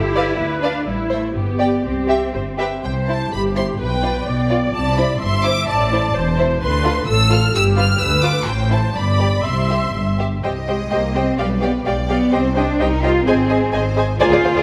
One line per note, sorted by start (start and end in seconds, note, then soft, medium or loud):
0.00 0.30 G1 medium
0.00 0.63 E4 medium
0.00 0.40 G4 medium
0.15 0.27 B4 medium
0.15 0.27 D5 medium
0.15 0.27 F5 soft
0.39 0.77 D2 medium
0.39 0.86 B4 medium
0.63 0.86 D4 medium
0.63 0.74 B4 medium
0.63 0.74 D5 soft
0.63 0.74 F5 medium
0.86 1.25 A1 medium
0.86 0.94 G3 medium
0.86 1.34 E4 soft
1.10 1.34 A3 soft
1.10 1.22 C5 soft
1.10 1.22 E5 soft
1.35 1.74 G1 medium
1.35 1.83 B3 medium
1.35 1.83 G4 soft
1.59 1.71 G4 soft
1.59 1.71 D5 soft
1.59 1.71 G5 soft
1.84 2.24 C2 medium
1.84 2.58 C4 medium
1.84 2.28 G4 soft
2.08 2.20 G4 soft
2.08 2.20 E5 soft
2.08 2.21 G5 soft
2.34 2.74 G1 soft
2.34 2.42 C5 soft
2.59 2.71 G4 soft
2.59 2.67 B4 soft
2.59 2.71 E5 soft
2.59 2.71 G5 soft
2.84 3.24 C2 medium
2.84 3.24 C3 medium
2.84 3.29 C5 medium
2.84 2.92 G5 medium
3.08 3.16 E4 soft
3.08 3.16 C5 soft
3.08 3.32 A5 medium
3.32 3.72 G1 medium
3.32 3.72 G2 medium
3.32 3.80 G4 medium
3.32 3.41 B5 medium
3.56 3.64 E4 soft
3.56 3.64 C5 soft
3.56 3.65 C6 medium
3.80 4.19 B1 medium
3.80 4.19 B2 medium
3.80 4.26 B4 medium
3.80 4.49 G5 medium
4.03 4.11 F4 soft
4.03 4.11 D5 soft
4.27 4.66 B1 medium
4.27 4.66 B2 medium
4.27 5.21 D5 medium
4.49 4.57 F4 soft
4.49 4.57 D5 soft
4.74 5.13 C2 medium
4.74 5.13 C3 medium
4.74 4.96 A5 medium
4.97 5.05 E4 soft
4.97 5.05 C5 medium
4.97 5.21 B5 medium
5.21 5.61 G1 medium
5.21 5.61 G2 medium
5.21 5.68 E5 medium
5.21 5.44 C6 medium
5.44 5.52 E4 medium
5.44 5.52 C5 medium
5.44 5.68 D6 medium
5.68 6.08 A1 medium
5.68 6.08 A2 medium
5.68 6.16 D5 medium
5.68 6.37 A5 medium
5.92 6.00 E4 medium
5.92 6.00 C5 medium
6.15 6.54 E1 medium
6.15 6.54 E2 medium
6.15 6.62 C5 medium
6.38 6.46 E4 medium
6.38 6.46 C5 medium
6.62 7.00 D2 medium
6.62 7.00 D3 medium
6.62 7.07 B4 medium
6.62 7.05 C6 medium
6.85 6.92 F4 medium
6.85 6.92 A4 medium
7.08 7.47 A1 medium
7.08 7.47 A2 medium
7.08 7.54 A4 medium
7.08 7.31 E6 medium
7.31 7.38 F4 medium
7.31 7.39 A4 medium
7.31 7.55 F6 medium
7.54 7.93 G1 medium
7.54 7.93 G2 medium
7.54 7.99 G4 medium
7.54 7.63 E6 medium
7.77 7.84 F4 medium
7.77 7.84 B4 soft
7.77 8.00 F6 medium
8.00 8.39 D2 medium
8.00 8.47 B4 medium
8.00 8.24 E6 medium
8.23 8.31 F4 medium
8.23 8.31 B4 medium
8.23 8.47 D6 medium
8.47 8.87 A1 medium
8.47 8.87 A2 medium
8.47 8.96 C5 medium
8.47 8.71 G5 medium
8.71 8.79 E4 soft
8.71 8.79 C5 soft
8.71 8.96 A5 medium
8.95 9.37 G1 medium
8.95 9.37 G2 medium
8.95 9.44 D5 medium
8.95 9.45 B5 medium
9.20 9.28 G4 soft
9.20 9.28 D5 soft
9.45 9.86 C2 medium
9.45 9.86 C3 medium
9.45 10.20 E5 medium
9.45 10.20 C6 medium
9.70 9.78 G4 soft
9.70 9.78 E5 soft
9.94 10.35 G1 medium
9.94 10.35 G2 soft
10.19 10.27 G4 soft
10.19 10.27 E5 soft
10.43 10.86 C2 soft
10.43 10.51 G3 medium
10.43 10.52 G4 soft
10.43 10.52 C5 soft
10.43 11.34 D#5 medium
10.43 10.52 D#5 soft
10.43 10.52 G5 soft
10.67 10.91 G#3 medium
10.67 10.76 G4 soft
10.67 10.76 C5 soft
10.67 10.76 D#5 soft
10.67 10.75 G5 soft
10.91 11.33 C2 medium
10.91 11.15 A#3 medium
10.91 11.00 G4 soft
10.91 11.00 C5 soft
10.91 10.99 D#5 soft
10.91 10.99 G5 soft
11.15 11.38 C4 medium
11.15 11.23 G4 soft
11.15 11.24 C5 soft
11.15 11.23 D#5 soft
11.15 11.23 G5 soft
11.38 11.80 B1 medium
11.38 11.62 G3 medium
11.38 11.46 G4 soft
11.38 11.86 B4 medium
11.38 11.46 D5 soft
11.38 11.47 F5 soft
11.38 11.47 G5 soft
11.62 11.70 B3 medium
11.62 11.70 G4 soft
11.62 11.71 D5 soft
11.62 11.70 F5 soft
11.62 11.70 G5 soft
11.85 12.27 B1 medium
11.85 11.93 G#3 medium
11.85 11.94 G4 soft
11.85 11.94 D5 soft
11.85 12.32 D5 medium
11.85 11.95 F5 soft
11.85 11.94 G5 soft
12.09 12.32 B3 medium
12.09 12.17 G4 soft
12.09 12.18 D5 soft
12.09 12.18 F5 soft
12.09 12.17 G5 soft
12.32 12.74 C2 medium
12.32 12.56 C4 medium
12.32 12.41 G4 soft
12.32 12.41 C5 soft
12.32 12.80 C5 medium
12.32 12.41 D#5 soft
12.32 12.41 G5 soft
12.56 12.79 D4 medium
12.56 12.64 G4 soft
12.56 12.64 C5 soft
12.56 12.65 D#5 soft
12.56 12.64 G5 soft
12.80 13.21 C2 medium
12.80 13.03 D#4 medium
12.80 12.88 G4 soft
12.80 13.26 A#4 medium
12.80 12.88 C5 soft
12.80 12.88 D#5 medium
12.80 12.88 G5 medium
13.03 13.27 F4 medium
13.03 13.12 G4 soft
13.03 13.12 C5 soft
13.03 13.11 D#5 medium
13.03 13.11 G5 medium
13.26 13.68 G#1 medium
13.26 13.95 C4 medium
13.26 13.72 G#4 medium
13.26 13.35 G#4 medium
13.26 13.35 C5 medium
13.26 13.35 D#5 medium
13.26 13.35 G#5 medium
13.50 13.58 G#4 medium
13.50 13.58 C5 soft
13.50 13.58 D#5 soft
13.50 13.58 G#5 soft
13.73 14.14 G#1 medium
13.73 13.82 G#4 medium
13.73 13.82 C5 medium
13.73 14.19 C5 medium
13.73 13.81 D#5 medium
13.73 13.81 G#5 medium
13.97 14.05 G#4 medium
13.97 14.05 C5 medium
13.97 14.05 D#5 medium
13.97 14.05 G#5 soft
14.20 14.25 D2 medium
14.20 14.63 F4 medium
14.20 14.25 G#4 medium
14.20 14.63 A#4 medium
14.20 14.25 C5 medium
14.20 14.25 D5 medium
14.20 14.25 G#5 medium
14.32 14.36 D2 soft
14.32 14.37 G#4 medium
14.32 14.37 G#4 soft
14.32 14.37 C5 soft
14.32 14.37 D5 soft
14.43 14.48 D2 soft
14.43 14.49 G#4 soft
14.43 14.49 C5 medium
14.43 14.49 C5 soft
14.43 14.49 F5 soft
14.55 14.60 D2 medium
14.55 14.61 G#4 soft
14.55 14.61 C5 medium
14.55 14.60 D5 medium